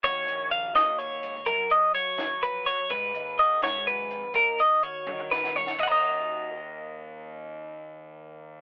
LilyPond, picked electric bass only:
\new Staff \with { instrumentName = "Picked electric bass" } { \clef bass \time 6/8 \key ees \minor \tempo 4. = 83 ees,8 bes,,4 ees,4. | ges,8 r4 ges4. | aes,8 ees,4 aes,4. | ees,8 r4 ees4. |
ees,2.~ | ees,2. | }